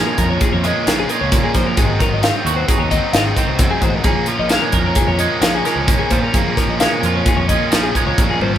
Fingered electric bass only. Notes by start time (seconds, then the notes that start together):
0.18 F2
0.53 F2
0.87 A#1
1.21 C#2
1.55 A#1
1.78 G#1
2.11 G#1
2.45 D#2
2.79 D#2
3.13 G#1
3.47 C2
3.82 A1
4.05 A#1
4.39 A#1
4.73 F2
5.07 F2
5.41 A#1
5.76 C#2
6.10 A#2
6.34 A#1
6.67 A#1
7.03 F2
7.37 F2
7.72 A#1
8.06 C#2
8.18 A#1
8.40 G#1